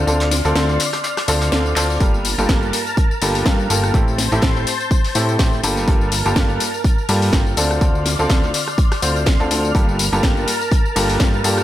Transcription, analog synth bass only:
0, 0, Header, 1, 2, 480
1, 0, Start_track
1, 0, Key_signature, -2, "minor"
1, 0, Tempo, 483871
1, 70, Time_signature, 4, 2, 24, 8
1, 11542, End_track
2, 0, Start_track
2, 0, Title_t, "Analog synth bass"
2, 0, Program_c, 0, 38
2, 71, Note_on_c, 0, 38, 96
2, 418, Note_off_c, 0, 38, 0
2, 445, Note_on_c, 0, 38, 96
2, 530, Note_off_c, 0, 38, 0
2, 551, Note_on_c, 0, 38, 97
2, 777, Note_off_c, 0, 38, 0
2, 1271, Note_on_c, 0, 38, 96
2, 1490, Note_off_c, 0, 38, 0
2, 1511, Note_on_c, 0, 38, 96
2, 1729, Note_off_c, 0, 38, 0
2, 1751, Note_on_c, 0, 38, 91
2, 1970, Note_off_c, 0, 38, 0
2, 1989, Note_on_c, 0, 31, 95
2, 2337, Note_off_c, 0, 31, 0
2, 2365, Note_on_c, 0, 31, 96
2, 2450, Note_off_c, 0, 31, 0
2, 2469, Note_on_c, 0, 31, 96
2, 2696, Note_off_c, 0, 31, 0
2, 3190, Note_on_c, 0, 31, 96
2, 3409, Note_off_c, 0, 31, 0
2, 3429, Note_on_c, 0, 43, 98
2, 3648, Note_off_c, 0, 43, 0
2, 3671, Note_on_c, 0, 31, 95
2, 3889, Note_off_c, 0, 31, 0
2, 3909, Note_on_c, 0, 33, 99
2, 4257, Note_off_c, 0, 33, 0
2, 4284, Note_on_c, 0, 33, 98
2, 4369, Note_off_c, 0, 33, 0
2, 4390, Note_on_c, 0, 33, 95
2, 4617, Note_off_c, 0, 33, 0
2, 5110, Note_on_c, 0, 45, 97
2, 5329, Note_off_c, 0, 45, 0
2, 5350, Note_on_c, 0, 45, 97
2, 5569, Note_off_c, 0, 45, 0
2, 5592, Note_on_c, 0, 31, 94
2, 5810, Note_off_c, 0, 31, 0
2, 5829, Note_on_c, 0, 31, 97
2, 6177, Note_off_c, 0, 31, 0
2, 6204, Note_on_c, 0, 31, 98
2, 6289, Note_off_c, 0, 31, 0
2, 6310, Note_on_c, 0, 31, 98
2, 6537, Note_off_c, 0, 31, 0
2, 7031, Note_on_c, 0, 43, 96
2, 7249, Note_off_c, 0, 43, 0
2, 7270, Note_on_c, 0, 31, 96
2, 7489, Note_off_c, 0, 31, 0
2, 7512, Note_on_c, 0, 38, 93
2, 7730, Note_off_c, 0, 38, 0
2, 7750, Note_on_c, 0, 38, 93
2, 8097, Note_off_c, 0, 38, 0
2, 8125, Note_on_c, 0, 38, 98
2, 8210, Note_off_c, 0, 38, 0
2, 8230, Note_on_c, 0, 38, 98
2, 8457, Note_off_c, 0, 38, 0
2, 8951, Note_on_c, 0, 38, 95
2, 9298, Note_off_c, 0, 38, 0
2, 9325, Note_on_c, 0, 38, 95
2, 9410, Note_off_c, 0, 38, 0
2, 9432, Note_on_c, 0, 38, 94
2, 9650, Note_off_c, 0, 38, 0
2, 9670, Note_on_c, 0, 31, 98
2, 10017, Note_off_c, 0, 31, 0
2, 10045, Note_on_c, 0, 31, 97
2, 10130, Note_off_c, 0, 31, 0
2, 10150, Note_on_c, 0, 31, 97
2, 10377, Note_off_c, 0, 31, 0
2, 10871, Note_on_c, 0, 31, 99
2, 11089, Note_off_c, 0, 31, 0
2, 11110, Note_on_c, 0, 43, 95
2, 11329, Note_off_c, 0, 43, 0
2, 11350, Note_on_c, 0, 43, 93
2, 11542, Note_off_c, 0, 43, 0
2, 11542, End_track
0, 0, End_of_file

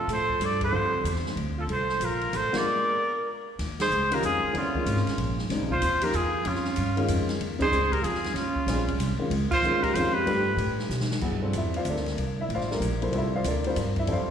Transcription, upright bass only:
0, 0, Header, 1, 3, 480
1, 0, Start_track
1, 0, Tempo, 317965
1, 1099, Time_signature, 3, 2, 24, 8
1, 21595, End_track
2, 0, Start_track
2, 0, Title_t, "Upright bass"
2, 0, Program_c, 0, 32
2, 109, Note_on_c, 0, 45, 70
2, 589, Note_off_c, 0, 45, 0
2, 597, Note_on_c, 0, 43, 81
2, 1074, Note_off_c, 0, 43, 0
2, 1088, Note_on_c, 0, 41, 78
2, 1560, Note_off_c, 0, 41, 0
2, 1570, Note_on_c, 0, 40, 80
2, 2042, Note_off_c, 0, 40, 0
2, 2051, Note_on_c, 0, 38, 81
2, 2519, Note_off_c, 0, 38, 0
2, 2528, Note_on_c, 0, 36, 78
2, 3001, Note_off_c, 0, 36, 0
2, 3019, Note_on_c, 0, 34, 76
2, 3488, Note_off_c, 0, 34, 0
2, 3516, Note_on_c, 0, 33, 77
2, 3797, Note_off_c, 0, 33, 0
2, 5414, Note_on_c, 0, 39, 77
2, 5886, Note_off_c, 0, 39, 0
2, 5893, Note_on_c, 0, 37, 78
2, 6366, Note_off_c, 0, 37, 0
2, 6374, Note_on_c, 0, 41, 85
2, 6666, Note_off_c, 0, 41, 0
2, 6854, Note_on_c, 0, 39, 79
2, 7326, Note_off_c, 0, 39, 0
2, 7335, Note_on_c, 0, 32, 87
2, 7626, Note_off_c, 0, 32, 0
2, 7811, Note_on_c, 0, 34, 88
2, 8284, Note_off_c, 0, 34, 0
2, 8296, Note_on_c, 0, 37, 81
2, 8466, Note_off_c, 0, 37, 0
2, 8466, Note_on_c, 0, 34, 53
2, 8621, Note_off_c, 0, 34, 0
2, 8630, Note_on_c, 0, 29, 69
2, 8777, Note_off_c, 0, 29, 0
2, 8785, Note_on_c, 0, 39, 83
2, 9251, Note_off_c, 0, 39, 0
2, 9262, Note_on_c, 0, 40, 86
2, 9729, Note_off_c, 0, 40, 0
2, 9745, Note_on_c, 0, 41, 81
2, 10210, Note_off_c, 0, 41, 0
2, 10225, Note_on_c, 0, 43, 80
2, 10690, Note_off_c, 0, 43, 0
2, 10696, Note_on_c, 0, 41, 83
2, 11165, Note_off_c, 0, 41, 0
2, 11171, Note_on_c, 0, 39, 78
2, 11636, Note_off_c, 0, 39, 0
2, 11645, Note_on_c, 0, 37, 77
2, 12119, Note_off_c, 0, 37, 0
2, 12128, Note_on_c, 0, 41, 85
2, 12581, Note_off_c, 0, 41, 0
2, 12590, Note_on_c, 0, 39, 79
2, 13070, Note_off_c, 0, 39, 0
2, 13079, Note_on_c, 0, 34, 88
2, 13555, Note_off_c, 0, 34, 0
2, 13567, Note_on_c, 0, 36, 93
2, 13859, Note_off_c, 0, 36, 0
2, 14042, Note_on_c, 0, 37, 90
2, 14336, Note_off_c, 0, 37, 0
2, 14532, Note_on_c, 0, 39, 81
2, 15000, Note_off_c, 0, 39, 0
2, 15009, Note_on_c, 0, 41, 87
2, 15479, Note_off_c, 0, 41, 0
2, 15494, Note_on_c, 0, 43, 84
2, 15943, Note_off_c, 0, 43, 0
2, 15953, Note_on_c, 0, 45, 90
2, 16430, Note_off_c, 0, 45, 0
2, 16442, Note_on_c, 0, 47, 85
2, 16915, Note_off_c, 0, 47, 0
2, 16935, Note_on_c, 0, 43, 76
2, 17402, Note_off_c, 0, 43, 0
2, 17412, Note_on_c, 0, 40, 83
2, 17880, Note_off_c, 0, 40, 0
2, 17887, Note_on_c, 0, 38, 81
2, 18358, Note_off_c, 0, 38, 0
2, 18367, Note_on_c, 0, 36, 81
2, 18838, Note_off_c, 0, 36, 0
2, 18852, Note_on_c, 0, 33, 76
2, 19315, Note_off_c, 0, 33, 0
2, 19324, Note_on_c, 0, 34, 91
2, 19797, Note_off_c, 0, 34, 0
2, 19817, Note_on_c, 0, 36, 85
2, 20283, Note_off_c, 0, 36, 0
2, 20292, Note_on_c, 0, 38, 87
2, 20761, Note_off_c, 0, 38, 0
2, 20775, Note_on_c, 0, 43, 88
2, 21237, Note_off_c, 0, 43, 0
2, 21246, Note_on_c, 0, 41, 82
2, 21538, Note_off_c, 0, 41, 0
2, 21595, End_track
3, 0, Start_track
3, 0, Title_t, "Muted upright bass strokes"
3, 3817, Note_on_c, 9, 29, 39
3, 3968, Note_off_c, 9, 29, 0
3, 6693, Note_on_c, 9, 29, 38
3, 6844, Note_off_c, 9, 29, 0
3, 7647, Note_on_c, 9, 29, 40
3, 7798, Note_off_c, 9, 29, 0
3, 13867, Note_on_c, 9, 29, 40
3, 14018, Note_off_c, 9, 29, 0
3, 14358, Note_on_c, 9, 29, 41
3, 14509, Note_off_c, 9, 29, 0
3, 21595, End_track
0, 0, End_of_file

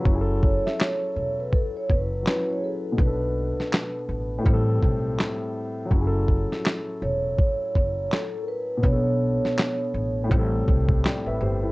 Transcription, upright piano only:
0, 0, Header, 1, 2, 480
1, 0, Start_track
1, 0, Key_signature, 3, "minor"
1, 0, Tempo, 731707
1, 37, Time_signature, 4, 2, 24, 8
1, 7688, End_track
2, 0, Start_track
2, 0, Title_t, "Upright piano"
2, 0, Program_c, 0, 0
2, 0, Control_c, 0, 64, 127
2, 0, Note_on_c, 0, 54, 70
2, 28, Note_on_c, 0, 61, 61
2, 45, Control_c, 0, 64, 0
2, 62, Note_on_c, 0, 64, 64
2, 94, Note_on_c, 0, 68, 57
2, 117, Note_off_c, 0, 68, 0
2, 137, Note_on_c, 0, 69, 75
2, 150, Control_c, 0, 64, 127
2, 1430, Note_off_c, 0, 54, 0
2, 1446, Note_off_c, 0, 61, 0
2, 1461, Note_on_c, 0, 54, 52
2, 1463, Note_off_c, 0, 64, 0
2, 1477, Note_on_c, 0, 61, 44
2, 1493, Note_on_c, 0, 64, 43
2, 1501, Note_off_c, 0, 69, 0
2, 1511, Note_on_c, 0, 71, 53
2, 1915, Note_on_c, 0, 47, 56
2, 1948, Note_on_c, 0, 59, 50
2, 1949, Note_off_c, 0, 54, 0
2, 1957, Note_off_c, 0, 61, 0
2, 1965, Note_off_c, 0, 64, 0
2, 1965, Control_c, 0, 64, 0
2, 1974, Note_off_c, 0, 71, 0
2, 1982, Note_on_c, 0, 62, 53
2, 2015, Note_on_c, 0, 69, 58
2, 2070, Control_c, 0, 64, 127
2, 2876, Note_off_c, 0, 47, 0
2, 2877, Note_on_c, 0, 45, 78
2, 2893, Note_off_c, 0, 59, 0
2, 2910, Note_off_c, 0, 62, 0
2, 2910, Note_on_c, 0, 55, 63
2, 2927, Note_off_c, 0, 69, 0
2, 2927, Control_c, 0, 64, 0
2, 2943, Note_on_c, 0, 60, 66
2, 2976, Note_on_c, 0, 69, 83
2, 3052, Control_c, 0, 64, 127
2, 3837, Note_off_c, 0, 45, 0
2, 3839, Note_on_c, 0, 54, 68
2, 3854, Note_off_c, 0, 55, 0
2, 3871, Note_off_c, 0, 60, 0
2, 3872, Note_on_c, 0, 61, 60
2, 3885, Control_c, 0, 64, 0
2, 3888, Note_off_c, 0, 69, 0
2, 3906, Note_on_c, 0, 64, 58
2, 3937, Note_on_c, 0, 68, 58
2, 3959, Note_off_c, 0, 68, 0
2, 3981, Note_on_c, 0, 69, 75
2, 3994, Control_c, 0, 64, 127
2, 5752, Note_off_c, 0, 54, 0
2, 5756, Note_on_c, 0, 47, 57
2, 5768, Note_off_c, 0, 61, 0
2, 5785, Note_off_c, 0, 64, 0
2, 5790, Note_on_c, 0, 59, 53
2, 5805, Control_c, 0, 64, 0
2, 5822, Note_on_c, 0, 62, 48
2, 5823, Note_off_c, 0, 69, 0
2, 5855, Note_on_c, 0, 69, 60
2, 5939, Control_c, 0, 64, 127
2, 6717, Note_off_c, 0, 47, 0
2, 6717, Note_on_c, 0, 45, 77
2, 6734, Note_off_c, 0, 59, 0
2, 6750, Note_on_c, 0, 55, 70
2, 6751, Note_off_c, 0, 62, 0
2, 6764, Control_c, 0, 64, 0
2, 6767, Note_off_c, 0, 69, 0
2, 6782, Note_on_c, 0, 60, 64
2, 6816, Note_on_c, 0, 69, 78
2, 6873, Control_c, 0, 64, 127
2, 7022, Note_off_c, 0, 69, 0
2, 7247, Note_on_c, 0, 79, 57
2, 7250, Note_on_c, 0, 74, 52
2, 7379, Note_off_c, 0, 79, 0
2, 7381, Note_off_c, 0, 74, 0
2, 7392, Note_on_c, 0, 76, 60
2, 7395, Note_on_c, 0, 71, 60
2, 7478, Note_off_c, 0, 76, 0
2, 7479, Note_off_c, 0, 71, 0
2, 7489, Note_on_c, 0, 72, 59
2, 7492, Note_on_c, 0, 67, 53
2, 7620, Note_off_c, 0, 72, 0
2, 7622, Note_off_c, 0, 67, 0
2, 7631, Note_on_c, 0, 69, 53
2, 7636, Note_on_c, 0, 64, 49
2, 7677, Note_off_c, 0, 45, 0
2, 7688, Note_off_c, 0, 55, 0
2, 7688, Note_off_c, 0, 60, 0
2, 7688, Note_off_c, 0, 64, 0
2, 7688, Note_off_c, 0, 69, 0
2, 7688, End_track
0, 0, End_of_file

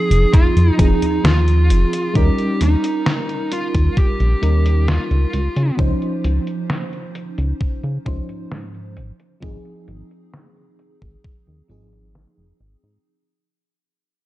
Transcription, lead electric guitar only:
0, 0, Header, 1, 2, 480
1, 0, Start_track
1, 0, Tempo, 909091
1, 1135, Time_signature, 4, 2, 24, 8
1, 7525, End_track
2, 0, Start_track
2, 0, Title_t, "Lead electric guitar"
2, 0, Program_c, 0, 29
2, 0, Note_on_c, 0, 68, 108
2, 179, Note_on_c, 0, 65, 97
2, 191, Note_off_c, 0, 68, 0
2, 419, Note_off_c, 0, 65, 0
2, 422, Note_on_c, 0, 63, 87
2, 658, Note_off_c, 0, 63, 0
2, 660, Note_on_c, 0, 65, 94
2, 1140, Note_on_c, 0, 67, 100
2, 1152, Note_off_c, 0, 65, 0
2, 1382, Note_on_c, 0, 63, 88
2, 1385, Note_off_c, 0, 67, 0
2, 1860, Note_off_c, 0, 63, 0
2, 1862, Note_on_c, 0, 65, 86
2, 2102, Note_on_c, 0, 67, 97
2, 2106, Note_off_c, 0, 65, 0
2, 2579, Note_on_c, 0, 65, 82
2, 2593, Note_off_c, 0, 67, 0
2, 3036, Note_off_c, 0, 65, 0
2, 7525, End_track
0, 0, End_of_file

